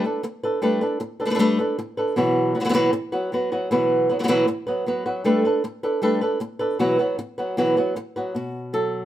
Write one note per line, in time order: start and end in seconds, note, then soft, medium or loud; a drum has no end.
0.04 0.22 D4 soft
0.04 0.23 A4 soft
0.04 0.23 B4 soft
0.23 muted nylon-string guitar stroke medium
0.43 0.61 D4 soft
0.43 0.61 A4 soft
0.43 0.62 B4 soft
0.62 0.80 G3 medium
0.62 0.81 A3 medium
0.62 0.81 D4 medium
0.62 0.81 A4 medium
0.62 0.80 B4 medium
0.81 0.99 D4 soft
0.81 0.99 A4 soft
0.81 1.00 B4 medium
1.00 muted nylon-string guitar stroke medium
1.20 1.25 D4 soft
1.20 1.25 A4 soft
1.20 1.26 B4 soft
1.25 1.29 A3 soft
1.25 1.29 D4 soft
1.25 1.30 A4 soft
1.25 1.30 B4 soft
1.30 1.33 A3 medium
1.30 1.34 D4 medium
1.30 1.34 A4 medium
1.30 1.35 B4 medium
1.35 1.38 A3 medium
1.35 1.38 D4 medium
1.35 1.39 A4 medium
1.35 1.39 B4 medium
1.39 1.58 G3 medium
1.39 1.58 A3 medium
1.39 1.58 D4 medium
1.39 1.58 A4 medium
1.39 1.58 B4 medium
1.59 1.78 D4 soft
1.59 1.78 A4 soft
1.59 1.77 B4 soft
1.79 muted nylon-string guitar stroke medium
1.97 2.17 D4 soft
1.97 2.16 A4 soft
1.97 2.16 B4 soft
2.16 2.54 B2 medium
2.16 2.54 E3 medium
2.16 2.54 F#3 medium
2.16 2.54 B3 medium
2.16 2.54 F#4 medium
2.16 2.53 B4 medium
2.55 2.59 F#3 soft
2.55 2.60 B3 soft
2.55 2.60 F#4 soft
2.55 2.60 B4 soft
2.60 2.63 E3 soft
2.60 2.64 F#3 soft
2.60 2.64 B3 soft
2.60 2.64 F#4 medium
2.60 2.65 B4 soft
2.65 2.68 E3 medium
2.65 2.68 F#3 medium
2.65 2.68 B3 medium
2.65 2.69 F#4 medium
2.65 2.69 B4 medium
2.69 2.73 E3 medium
2.69 2.73 F#3 medium
2.69 2.74 B3 medium
2.69 2.73 F#4 medium
2.69 2.74 B4 medium
2.74 2.92 B2 medium
2.74 2.92 E3 medium
2.74 2.92 F#3 medium
2.74 2.92 B3 medium
2.74 2.92 F#4 medium
2.74 2.92 B4 medium
2.93 muted nylon-string guitar stroke medium
3.12 3.31 F#3 soft
3.12 3.31 B3 soft
3.12 3.31 F#4 soft
3.12 3.31 B4 soft
3.32 3.51 F#3 soft
3.32 3.51 B3 medium
3.32 3.51 F#4 medium
3.32 3.51 B4 medium
3.52 3.70 F#3 soft
3.52 3.71 B3 soft
3.52 3.70 F#4 soft
3.52 3.70 B4 soft
3.71 4.09 B2 medium
3.71 4.09 E3 medium
3.71 4.09 F#3 medium
3.71 4.09 B3 medium
3.71 4.09 F#4 medium
3.71 4.08 B4 medium
4.10 4.18 F#3 soft
4.10 4.19 B3 soft
4.10 4.19 F#4 soft
4.10 4.19 B4 soft
4.19 4.22 E3 soft
4.19 4.23 F#3 soft
4.19 4.23 B3 soft
4.19 4.23 F#4 soft
4.19 4.24 B4 medium
4.24 4.27 E3 medium
4.24 4.27 F#3 medium
4.24 4.28 B3 medium
4.24 4.28 F#4 medium
4.24 4.28 B4 medium
4.28 4.46 B2 medium
4.28 4.47 E3 medium
4.28 4.47 F#3 medium
4.28 4.47 B3 medium
4.28 4.47 F#4 medium
4.28 4.47 B4 medium
4.48 muted nylon-string guitar stroke medium
4.67 4.85 F#3 soft
4.67 4.86 B3 soft
4.67 4.86 F#4 soft
4.67 4.85 B4 soft
4.86 5.05 F#3 medium
4.86 5.05 B3 medium
4.86 5.05 F#4 medium
4.86 5.04 B4 medium
5.06 5.25 F#3 soft
5.06 5.25 B3 soft
5.06 5.24 F#4 soft
5.06 5.24 B4 soft
5.24 5.43 G3 medium
5.24 5.44 A3 medium
5.24 5.44 D4 medium
5.24 5.44 A4 medium
5.24 5.44 B4 medium
5.45 5.63 D4 soft
5.45 5.64 A4 soft
5.45 5.63 B4 soft
5.64 muted nylon-string guitar stroke medium
5.83 6.01 D4 soft
5.83 6.02 A4 soft
5.83 6.02 B4 medium
6.02 6.21 G3 medium
6.02 6.21 A3 medium
6.02 6.21 D4 medium
6.02 6.21 A4 medium
6.02 6.20 B4 medium
6.21 6.40 D4 soft
6.21 6.40 A4 soft
6.21 6.40 B4 soft
6.40 muted nylon-string guitar stroke medium
6.59 6.79 D4 soft
6.59 6.79 A4 soft
6.59 6.78 B4 soft
6.79 6.98 B2 medium
6.79 6.98 E3 medium
6.79 6.98 F#3 medium
6.79 6.98 B3 medium
6.79 6.98 F#4 medium
6.79 6.98 B4 medium
6.99 7.17 F#3 soft
6.99 7.18 B3 soft
6.99 7.18 F#4 soft
6.99 7.18 B4 soft
7.19 muted nylon-string guitar stroke medium
7.38 7.57 F#3 soft
7.38 7.57 B3 soft
7.38 7.57 F#4 soft
7.38 7.56 B4 soft
7.57 7.76 B2 medium
7.57 7.76 E3 medium
7.57 7.76 F#3 medium
7.57 7.76 B3 medium
7.57 7.76 F#4 medium
7.57 7.76 B4 medium
7.77 7.95 F#3 soft
7.77 7.95 B3 soft
7.77 7.96 F#4 soft
7.77 7.95 B4 medium
7.96 muted nylon-string guitar stroke medium
8.16 8.35 F#3 soft
8.16 8.35 B3 soft
8.16 8.35 F#4 soft
8.16 8.34 B4 soft
8.35 9.05 B2 medium
8.35 9.05 F#4 medium
8.73 9.05 F#3 soft
8.73 9.05 A4 medium